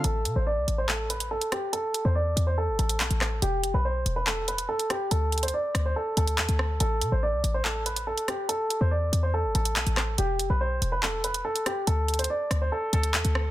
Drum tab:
HH |x---x-------x-------x-x---x-x---|x---x-------x-------x-x-x-x-----|x---x-------x-------x-x---x-x---|x---xxxx----x-------x-x-x-x-----|
CP |----------------x---------------|------------------------x---x---|----------------x---------------|------------------------x-------|
SD |----------------------------r---|----------------------------r---|----------------------------r---|------------r---------------r---|

HH |x---x-------x-------x-x---x-x---|x---x-------x-------x-x-x-x-----|x---x-------x-------x-x---x-x---|x---xxxx----x-------x-x-x-x-----|
CP |----------------x---------------|------------------------x---x---|----------------x---------------|------------------------x-------|
SD |----------------------------r---|----------------------------r---|----------------------------r---|------------r---------------r---|